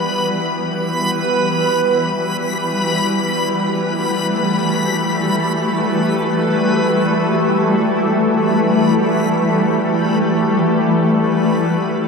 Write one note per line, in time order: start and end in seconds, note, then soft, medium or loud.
0.00 11.99 E3 medium
0.00 12.00 G3 medium
0.00 3.64 B3 medium
0.00 12.00 F#4 medium
0.00 12.01 B4 medium
0.00 12.02 B4 medium
0.00 12.03 B5 medium
3.28 12.00 A3 medium
12.00 12.08 E3 medium